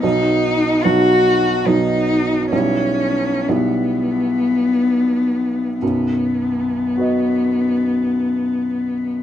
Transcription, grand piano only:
0.03 B1 F#3 B3 D#4
0.85 B1 F#3 B3 D#4
1.66 B1 F#3 B3 D#4
2.52 B1 G3 B3 E4
3.48 B1 G3 B3 E4
5.82 B1 F#2
6.97 F#4 B4 D#5

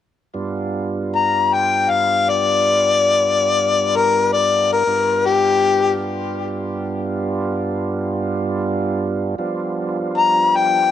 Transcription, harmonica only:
1.15 A#5
1.54 G5
1.91 F5
2.29 D5
3.96 A#4
4.33 D5
4.73 A#4
5.26 G4
10.18 A#5
10.56 G5

